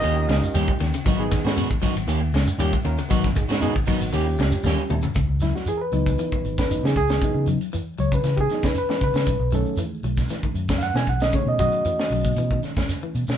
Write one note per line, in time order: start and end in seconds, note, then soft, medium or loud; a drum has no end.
0.00 0.25 D#2 loud
0.00 0.75 D#3 medium
0.00 0.25 D#3 medium
0.00 0.16 A#3 medium
0.00 0.84 C#4 medium
0.00 0.15 C#4 loud
0.00 0.77 D#4 medium
0.00 0.84 F4 medium
0.00 0.85 G4 medium
0.00 0.15 G4 medium
0.00 0.77 D#5 loud
0.00 ride bell medium
0.04 shekere medium
0.17 muted clean electric guitar stroke medium
0.27 0.40 C#2 medium
0.27 0.51 G#3 medium
0.27 0.51 F5 medium
0.27 muted clean electric guitar stroke soft
0.27 snare medium
0.27 ride bell soft
0.27 shekere soft
0.43 muted clean electric guitar stroke medium
0.43 shekere medium
0.54 0.66 D#2 loud
0.54 0.76 G3 medium
0.54 0.70 A#3 medium
0.54 0.71 C#4 loud
0.54 0.71 G4 loud
0.54 1.02 G5 medium
0.54 snare soft
0.54 ride bell medium
0.54 shekere medium
0.68 kick medium
0.80 0.91 D#2 loud
0.80 0.92 D#3 medium
0.80 muted clean electric guitar stroke soft
0.80 snare soft
0.80 ride bell medium
0.80 shekere soft
0.94 1.04 C#3 medium
0.94 muted clean electric guitar stroke soft
0.94 ride bell medium
0.94 shekere medium
1.04 1.39 G#1 loud
1.04 1.22 D#3 medium
1.04 1.28 F#3 loud
1.04 1.22 B3 medium
1.04 1.11 D#4 medium
1.04 1.22 D#4 medium
1.04 1.12 F#4 loud
1.04 1.22 F#4 medium
1.04 kick medium
1.04 ride bell medium
1.04 shekere medium
1.18 1.70 B3 medium
1.18 1.71 D#4 medium
1.18 1.71 G#4 loud
1.31 1.53 D#3 medium
1.31 muted clean electric guitar stroke soft
1.31 kick medium
1.31 snare soft
1.31 ride bell medium
1.31 shekere medium
1.44 1.66 G#2 medium
1.44 1.56 B3 medium
1.44 1.57 F#4 medium
1.44 muted clean electric guitar stroke medium
1.44 snare medium
1.44 shekere soft
1.57 1.79 B2 medium
1.57 1.70 D#3 medium
1.57 1.69 B3 medium
1.57 1.69 D#4 medium
1.57 1.69 F#4 medium
1.57 ride bell medium
1.57 shekere medium
1.70 1.81 G#1 medium
1.70 muted clean electric guitar stroke soft
1.70 kick medium
1.82 1.96 D#3 medium
1.82 2.04 F#3 medium
1.82 1.96 B3 loud
1.82 1.96 D#4 loud
1.82 1.95 F#4 loud
1.82 kick medium
1.82 ride bell medium
1.82 shekere soft
1.96 2.06 G#1 loud
1.96 muted clean electric guitar stroke medium
1.96 ride bell medium
1.96 shekere medium
2.07 2.29 D#2 loud
2.07 2.30 D#3 medium
2.07 2.21 A#3 medium
2.07 2.21 C#4 medium
2.07 2.20 G4 loud
2.07 ride bell medium
2.07 shekere medium
2.21 muted clean electric guitar stroke medium
2.33 2.45 C#2 medium
2.33 2.56 G#3 medium
2.33 muted clean electric guitar stroke soft
2.33 snare medium
2.33 ride bell medium
2.33 shekere soft
2.47 muted clean electric guitar stroke soft
2.47 shekere medium
2.58 2.70 D#2 loud
2.58 2.82 G3 medium
2.58 2.75 A#3 medium
2.58 2.72 C#4 loud
2.58 2.73 F4 medium
2.58 2.75 G4 loud
2.58 2.73 G4 loud
2.58 muted clean electric guitar stroke medium
2.58 ride bell medium
2.58 shekere loud
2.73 kick medium
2.85 2.96 D#2 medium
2.85 2.96 D#3 medium
2.85 2.98 C#4 medium
2.85 2.98 F4 medium
2.85 2.99 A#4 loud
2.85 muted clean electric guitar stroke soft
2.85 ride bell medium
2.85 shekere soft
2.98 3.09 C#3 medium
2.98 muted clean electric guitar stroke soft
2.98 ride bell medium
2.98 shekere medium
3.09 3.44 G#1 medium
3.09 3.26 D#3 medium
3.09 3.32 F#3 loud
3.09 3.23 B3 medium
3.09 3.26 B3 loud
3.09 3.24 D#4 medium
3.09 3.26 D#4 medium
3.09 3.24 F#4 loud
3.09 3.27 F#4 loud
3.09 kick medium
3.09 ride bell medium
3.09 shekere medium
3.24 kick medium
3.24 snare soft
3.36 3.58 D#3 medium
3.36 3.42 D#4 loud
3.36 3.43 G#4 loud
3.36 muted clean electric guitar stroke soft
3.36 kick medium
3.36 ride bell medium
3.36 shekere medium
3.48 3.71 G#2 medium
3.48 3.60 B3 medium
3.48 3.55 D#4 loud
3.48 3.60 D#4 medium
3.48 3.61 F#4 medium
3.48 3.56 G#4 medium
3.48 snare medium
3.48 ride bell medium
3.48 shekere soft
3.61 3.84 B2 medium
3.61 3.75 D#3 medium
3.61 3.75 B3 loud
3.61 3.74 B3 medium
3.61 3.75 D#4 loud
3.61 3.74 D#4 medium
3.61 3.74 F#4 medium
3.61 3.76 G#4 loud
3.61 ride bell soft
3.61 shekere medium
3.75 3.86 G#1 medium
3.75 muted clean electric guitar stroke soft
3.75 kick medium
3.87 4.00 D#3 loud
3.87 4.09 F#3 medium
3.87 4.13 B3 medium
3.87 4.01 B3 loud
3.87 4.00 D#4 loud
3.87 4.13 D#4 medium
3.87 4.13 F#4 loud
3.87 muted fingered electric bass stroke soft
3.87 kick medium
3.87 open hi-hat medium
3.87 shekere soft
4.01 4.11 G#1 medium
4.01 muted clean electric guitar stroke soft
4.01 ride bell medium
4.01 shekere medium
4.13 4.35 D#2 loud
4.13 4.35 D#3 medium
4.13 4.26 A#3 medium
4.13 4.95 C#4 medium
4.13 4.26 C#4 medium
4.13 4.96 F4 medium
4.13 4.25 G4 loud
4.13 4.96 G4 loud
4.13 ride bell soft
4.13 shekere medium
4.26 muted clean electric guitar stroke soft
4.38 4.50 C#2 medium
4.38 4.61 G#3 medium
4.38 muted clean electric guitar stroke soft
4.38 snare medium
4.38 ride bell medium
4.38 shekere soft
4.51 muted fingered electric bass stroke soft
4.51 muted clean electric guitar stroke soft
4.51 shekere medium
4.63 4.75 D#2 loud
4.63 4.86 G3 medium
4.63 4.81 A#3 loud
4.63 4.81 C#4 loud
4.63 4.81 G4 loud
4.63 snare medium
4.63 shekere medium
4.89 5.01 D#2 medium
4.89 muted clean electric guitar stroke soft
4.89 mid tom medium
4.89 shekere soft
5.02 5.14 C#3 medium
5.02 muted clean electric guitar stroke soft
5.02 floor tom medium
5.02 shekere medium
5.15 5.27 C#2 medium
5.15 5.38 C#3 medium
5.15 kick medium
5.15 closed hi-hat medium
5.15 shekere medium
5.29 5.51 C#2 medium
5.40 5.64 F#3 medium
5.40 5.54 E4 medium
5.40 snare soft
5.40 closed hi-hat medium
5.40 shekere medium
5.54 5.66 F#4 medium
5.54 snare soft
5.54 shekere soft
5.66 5.89 E3 medium
5.66 5.80 G#4 medium
5.66 closed hi-hat medium
5.66 shekere medium
5.77 5.80 A#4 medium
5.81 6.56 B4 medium
5.92 6.14 C#2 medium
5.92 6.65 E3 soft
5.92 6.66 F#3 soft
5.92 6.15 F#3 medium
5.92 6.66 B3 soft
5.92 6.66 D#4 medium
5.92 closed hi-hat medium
5.92 shekere soft
6.06 kick medium
6.06 closed hi-hat medium
6.06 shekere medium
6.19 6.30 E3 medium
6.19 closed hi-hat medium
6.19 shekere medium
6.32 6.54 D#3 medium
6.32 kick medium
6.44 6.78 G#1 medium
6.44 closed hi-hat soft
6.44 shekere soft
6.58 6.83 B4 medium
6.58 kick medium
6.58 snare medium
6.58 closed hi-hat soft
6.58 shekere medium
6.69 6.93 E3 soft
6.69 6.93 F#3 soft
6.69 6.93 B3 soft
6.69 6.93 D#4 medium
6.69 closed hi-hat medium
6.69 shekere medium
6.83 6.94 C#3 medium
6.83 6.96 G#4 medium
6.83 snare medium
6.95 7.18 C#2 medium
6.95 7.46 G#4 medium
6.95 kick medium
6.95 closed hi-hat medium
6.95 shekere soft
7.09 7.20 D#3 medium
7.09 snare medium
7.09 shekere medium
7.21 7.44 C#3 medium
7.21 7.56 E3 medium
7.21 7.57 F#3 medium
7.21 7.57 B3 soft
7.21 7.57 D#4 medium
7.21 kick medium
7.21 closed hi-hat medium
7.21 shekere medium
7.34 7.57 C#3 medium
7.47 7.70 F#3 medium
7.47 closed hi-hat medium
7.47 shekere medium
7.61 closed hi-hat soft
7.61 shekere soft
7.73 7.95 E3 medium
7.73 closed hi-hat medium
7.73 shekere medium
7.98 8.10 C#2 medium
7.98 8.21 F#3 medium
7.98 8.12 C#5 medium
7.98 closed hi-hat soft
7.98 shekere soft
8.12 8.23 C#3 medium
8.12 8.38 B4 medium
8.12 kick medium
8.12 shekere medium
8.23 8.46 C#3 medium
8.23 8.36 E3 medium
8.23 snare soft
8.23 closed hi-hat medium
8.23 shekere medium
8.37 8.60 D#3 medium
8.37 8.39 G4 medium
8.37 kick medium
8.41 8.64 G#4 loud
8.49 8.74 E3 soft
8.49 8.74 F#3 soft
8.49 8.74 B3 soft
8.49 8.74 D#4 medium
8.49 snare soft
8.49 closed hi-hat soft
8.49 shekere soft
8.63 8.86 C#3 medium
8.63 8.76 B4 medium
8.63 kick medium
8.63 snare medium
8.63 shekere medium
8.75 9.02 B4 medium
8.75 closed hi-hat medium
8.75 shekere medium
8.89 9.11 E3 medium
8.89 snare medium
9.01 9.13 C#3 medium
9.01 9.53 B4 medium
9.01 kick medium
9.01 closed hi-hat medium
9.01 shekere soft
9.14 9.25 C#3 medium
9.14 9.25 D#3 medium
9.14 snare medium
9.14 shekere medium
9.26 9.39 B1 medium
9.26 9.49 C#3 medium
9.26 kick medium
9.26 closed hi-hat medium
9.26 shekere medium
9.39 9.62 B1 medium
9.52 11.32 D#3 medium
9.52 9.75 F#3 medium
9.52 11.32 G#3 soft
9.52 11.33 A3 soft
9.52 9.78 C#4 medium
9.52 9.79 A4 medium
9.52 closed hi-hat medium
9.52 shekere medium
9.65 shekere soft
9.77 10.01 E3 medium
9.77 closed hi-hat medium
9.77 shekere medium
10.03 10.26 B1 medium
10.03 10.27 F#3 medium
10.03 closed hi-hat medium
10.03 shekere soft
10.17 kick medium
10.17 snare soft
10.17 closed hi-hat medium
10.17 shekere medium
10.29 10.42 E3 medium
10.29 snare soft
10.29 closed hi-hat medium
10.29 shekere medium
10.43 10.67 D#3 medium
10.43 kick medium
10.54 10.89 F#2 medium
10.54 closed hi-hat medium
10.54 shekere soft
10.69 10.92 C#3 medium
10.69 kick medium
10.69 snare medium
10.69 closed hi-hat medium
10.69 shekere medium
10.78 10.82 F5 medium
10.78 snare soft
10.78 closed hi-hat medium
10.78 shekere medium
10.83 10.95 F#5 loud
10.94 11.05 B2 medium
10.94 11.18 E3 medium
10.94 11.07 G#5 medium
10.94 snare medium
11.06 11.29 B1 medium
11.06 11.21 F#5 medium
11.06 kick medium
11.06 closed hi-hat soft
11.06 shekere soft
11.20 11.32 D#3 medium
11.20 11.33 D#5 medium
11.20 snare medium
11.20 shekere medium
11.32 11.56 C#3 medium
11.32 13.36 D#3 medium
11.32 13.36 G#3 medium
11.32 13.37 A3 soft
11.32 13.37 C#4 medium
11.32 11.47 C#5 medium
11.32 kick medium
11.32 closed hi-hat medium
11.32 shekere medium
11.46 11.69 B2 medium
11.46 11.59 D#5 medium
11.59 11.82 F#3 medium
11.59 12.59 F#4 medium
11.59 12.60 D#5 medium
11.59 kick medium
11.59 closed hi-hat soft
11.59 shekere medium
11.72 closed hi-hat soft
11.72 shekere soft
11.85 12.08 E3 medium
11.85 closed hi-hat medium
11.85 shekere medium
11.99 snare medium
12.10 12.22 B1 medium
12.10 12.34 F#3 medium
12.10 open hi-hat medium
12.10 shekere soft
12.24 12.35 B2 medium
12.24 kick medium
12.24 shekere medium
12.36 12.59 B2 medium
12.36 12.49 E3 medium
12.36 closed hi-hat medium
12.36 shekere medium
12.51 12.74 D#3 medium
12.51 kick medium
12.63 snare soft
12.63 closed hi-hat soft
12.63 shekere soft
12.77 12.99 C#3 medium
12.77 kick medium
12.77 snare medium
12.77 shekere medium
12.89 snare soft
12.89 closed hi-hat medium
12.89 shekere medium
13.03 13.25 E3 medium
13.15 13.26 B2 medium
13.15 closed hi-hat medium
13.15 shekere soft
13.27 13.38 B2 medium
13.27 13.38 D#3 medium
13.27 snare medium
13.27 shekere medium